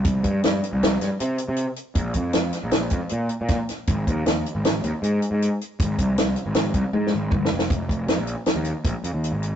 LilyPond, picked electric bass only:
\new Staff \with { instrumentName = "Picked electric bass" } { \clef bass \time 5/4 \key f \dorian \tempo 4 = 157 c,8 g,8 g,8 r16 c,8. g,16 r16 c8 r16 c8 r8. | bes,,8 f,8 f,8 r16 bes,,8. f,16 r16 bes,8 r16 bes,8 r8. | aes,,8 ees,8 ees,8 r16 aes,,8. ees,16 r16 aes,8 r16 aes,8 r8. | aes,,8 c,8 c,8 r16 aes,,8. c,16 r16 aes,8 aes,,8 g,,8 f,,8 |
f,,8 f,,8 f,16 bes,,8 r8 ees,8 r16 bes,,16 r16 f,16 ees,8 aes,,8. | }